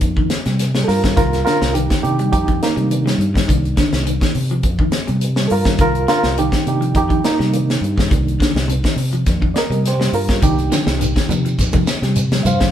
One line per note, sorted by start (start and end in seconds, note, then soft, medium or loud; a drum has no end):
0.00 0.27 F2 medium
0.00 0.27 A#3 medium
0.00 0.28 D#4 loud
0.00 kick medium
0.00 closed hi-hat medium
0.17 0.36 D#3 medium
0.17 kick medium
0.30 snare medium
0.30 closed hi-hat medium
0.45 0.84 C3 medium
0.45 0.65 G3 medium
0.45 snare soft
0.45 closed hi-hat soft
0.59 snare soft
0.59 closed hi-hat medium
0.75 0.94 G3 medium
0.75 snare medium
0.84 1.15 F4 medium
0.84 0.88 A4 medium
0.88 1.14 G2 medium
0.88 1.16 A#4 loud
0.88 snare soft
0.88 open hi-hat medium
1.04 1.13 D#3 medium
1.04 kick medium
1.04 snare medium
1.04 closed hi-hat soft
1.17 1.43 C2 loud
1.17 1.36 D#3 medium
1.17 1.43 F4 medium
1.17 1.44 A#4 medium
1.17 kick loud
1.17 snare soft
1.17 closed hi-hat medium
1.33 snare soft
1.33 closed hi-hat soft
1.45 1.65 D3 medium
1.45 1.72 F4 medium
1.45 1.74 A#4 medium
1.45 snare medium
1.45 closed hi-hat soft
1.62 1.87 C2 medium
1.62 snare medium
1.73 1.85 D#3 medium
1.73 2.01 D#4 medium
1.73 2.02 G4 medium
1.73 closed hi-hat medium
1.90 2.09 D#3 medium
1.90 kick medium
1.90 snare medium
1.90 closed hi-hat soft
2.01 2.30 C3 medium
2.01 2.90 D#3 medium
2.01 2.61 A#3 soft
2.01 2.90 D4 medium
2.01 2.30 D#4 medium
2.01 2.31 G4 medium
2.01 closed hi-hat soft
2.19 2.38 G3 medium
2.19 closed hi-hat soft
2.32 2.59 F2 loud
2.32 2.60 D#4 medium
2.32 2.61 G4 medium
2.32 kick medium
2.32 closed hi-hat medium
2.48 2.67 D#3 medium
2.48 kick medium
2.48 closed hi-hat soft
2.62 2.90 A#3 medium
2.62 4.32 D#4 medium
2.62 snare medium
2.62 closed hi-hat medium
2.76 3.15 C3 medium
2.76 2.95 G3 medium
2.76 closed hi-hat soft
2.91 3.17 D#3 soft
2.91 3.17 A#3 soft
2.91 3.17 D4 medium
2.91 closed hi-hat medium
3.06 3.25 G3 medium
3.06 snare medium
3.06 closed hi-hat soft
3.18 3.45 G2 medium
3.18 closed hi-hat soft
3.34 3.43 D#3 medium
3.34 kick medium
3.34 snare medium
3.34 closed hi-hat soft
3.48 3.75 C2 medium
3.48 4.31 D#3 medium
3.48 3.67 D#3 medium
3.48 4.31 A#3 soft
3.48 4.31 D4 medium
3.48 kick medium
3.48 closed hi-hat medium
3.65 closed hi-hat soft
3.77 3.96 D3 medium
3.77 kick medium
3.77 snare medium
3.77 closed hi-hat soft
3.92 4.18 C2 medium
3.92 snare medium
3.92 closed hi-hat soft
4.06 4.16 D#3 medium
4.06 closed hi-hat medium
4.21 4.41 D#3 medium
4.21 kick medium
4.21 snare medium
4.21 closed hi-hat soft
4.35 4.61 C3 medium
4.35 open hi-hat medium
4.50 4.70 F3 medium
4.50 closed hi-hat soft
4.63 4.89 F2 loud
4.63 kick medium
4.63 closed hi-hat medium
4.79 4.99 D#3 medium
4.79 kick medium
4.92 snare medium
4.92 closed hi-hat medium
5.07 5.47 C3 loud
5.07 5.27 G3 medium
5.07 closed hi-hat soft
5.21 closed hi-hat medium
5.36 5.56 G3 medium
5.36 snare medium
5.48 5.77 G2 medium
5.48 5.78 F4 medium
5.48 5.51 A4 medium
5.48 open hi-hat medium
5.52 5.80 A#4 loud
5.65 5.75 D#3 medium
5.65 kick medium
5.65 snare medium
5.65 closed hi-hat soft
5.78 6.05 C2 loud
5.78 5.98 D#3 medium
5.78 6.07 F4 medium
5.78 6.08 A#4 medium
5.78 kick loud
5.78 snare soft
5.78 closed hi-hat medium
5.95 closed hi-hat soft
6.08 6.27 D3 medium
6.08 6.35 F4 medium
6.08 6.37 A#4 loud
6.08 snare medium
6.08 closed hi-hat soft
6.23 6.50 C2 medium
6.23 snare medium
6.37 6.48 D#3 medium
6.37 6.65 D#4 medium
6.37 6.66 G4 medium
6.37 closed hi-hat medium
6.52 6.72 D#3 medium
6.52 kick medium
6.52 snare medium
6.52 closed hi-hat soft
6.66 6.93 C3 medium
6.66 7.06 D#3 medium
6.66 7.06 A#3 soft
6.66 7.06 D4 medium
6.66 6.94 D#4 medium
6.66 6.95 G4 medium
6.66 closed hi-hat soft
6.81 7.00 F3 medium
6.81 closed hi-hat soft
6.94 7.21 F2 medium
6.94 7.23 D#4 medium
6.94 7.25 G4 medium
6.94 kick medium
6.94 closed hi-hat medium
7.09 7.29 D#3 medium
7.09 kick medium
7.09 closed hi-hat soft
7.24 7.51 A#3 medium
7.24 8.95 D#4 loud
7.24 snare medium
7.24 closed hi-hat medium
7.39 7.78 C3 medium
7.39 7.58 G3 medium
7.39 snare soft
7.39 closed hi-hat soft
7.53 7.79 D#3 soft
7.53 7.79 A#3 soft
7.53 7.79 D4 medium
7.53 closed hi-hat medium
7.70 snare medium
7.70 closed hi-hat soft
7.81 8.08 G2 medium
7.81 closed hi-hat soft
7.97 8.06 D#3 medium
7.97 kick medium
7.97 snare medium
7.97 closed hi-hat soft
8.10 8.37 C2 medium
8.10 8.51 D#3 medium
8.10 8.51 A#3 medium
8.10 8.51 D4 medium
8.10 muted clean electric guitar stroke medium
8.10 kick loud
8.10 closed hi-hat medium
8.28 closed hi-hat soft
8.40 8.59 D3 medium
8.40 kick medium
8.40 snare medium
8.40 closed hi-hat soft
8.54 8.81 C2 medium
8.54 snare medium
8.54 closed hi-hat soft
8.68 8.78 C3 medium
8.68 closed hi-hat medium
8.84 9.04 D#3 medium
8.84 kick medium
8.84 snare medium
8.84 closed hi-hat soft
8.96 9.23 C3 medium
8.96 open hi-hat medium
9.13 9.32 F3 medium
9.13 closed hi-hat soft
9.26 9.53 F2 loud
9.26 9.53 D#3 soft
9.26 9.53 A#3 soft
9.26 9.54 D4 medium
9.26 kick medium
9.26 snare soft
9.26 closed hi-hat medium
9.42 9.61 D#3 medium
9.42 kick medium
9.54 9.84 A#4 medium
9.54 9.58 D5 medium
9.54 9.85 D#5 medium
9.54 snare medium
9.54 closed hi-hat medium
9.70 10.09 C3 medium
9.70 9.90 G3 medium
9.70 closed hi-hat soft
9.85 10.13 G4 medium
9.85 10.14 C5 medium
9.85 snare soft
9.85 closed hi-hat medium
10.00 10.19 G3 medium
10.00 snare medium
10.13 10.39 G2 medium
10.13 10.41 F4 medium
10.13 10.42 A#4 medium
10.13 open hi-hat medium
10.29 muted clean electric guitar stroke medium
10.29 kick medium
10.29 snare medium
10.29 closed hi-hat soft
10.42 10.68 C2 medium
10.42 10.61 D#3 medium
10.42 12.70 D#3 medium
10.42 12.71 A#3 soft
10.42 12.71 D4 medium
10.42 12.13 D#4 medium
10.42 12.13 G4 loud
10.42 kick medium
10.42 closed hi-hat medium
10.42 shekere loud
10.58 closed hi-hat soft
10.58 shekere soft
10.72 10.91 D3 medium
10.72 snare medium
10.72 closed hi-hat soft
10.72 high conga medium
10.72 shekere medium
10.87 11.13 C2 medium
10.87 snare medium
10.87 shekere soft
10.99 11.10 D#3 medium
10.99 closed hi-hat medium
10.99 shekere medium
11.16 11.35 D#3 medium
11.16 kick medium
11.16 snare medium
11.16 closed hi-hat soft
11.16 shekere soft
11.29 11.55 C3 medium
11.29 closed hi-hat soft
11.29 high conga medium
11.29 low conga medium
11.29 shekere medium
11.45 11.64 F3 medium
11.45 closed hi-hat soft
11.45 shekere soft
11.58 11.84 F2 loud
11.58 kick medium
11.58 snare soft
11.58 closed hi-hat medium
11.58 shekere loud
11.73 11.93 D#3 medium
11.73 kick medium
11.73 closed hi-hat soft
11.73 high conga medium
11.73 low conga medium
11.73 shekere soft
11.87 snare medium
11.87 closed hi-hat medium
11.87 shekere medium
12.02 12.41 C3 loud
12.02 12.22 G3 medium
12.02 snare soft
12.02 closed hi-hat soft
12.02 shekere soft
12.15 closed hi-hat medium
12.15 shekere medium
12.32 12.51 G3 medium
12.32 snare medium
12.32 closed hi-hat soft
12.32 high conga medium
12.32 shekere soft
12.43 12.71 G2 medium
12.43 12.71 C5 medium
12.43 12.47 E5 medium
12.43 12.71 F5 medium
12.43 closed hi-hat soft
12.43 high conga medium
12.43 low conga medium
12.43 shekere medium
12.60 12.70 D#3 medium
12.60 kick medium
12.60 snare medium
12.60 closed hi-hat soft
12.60 shekere soft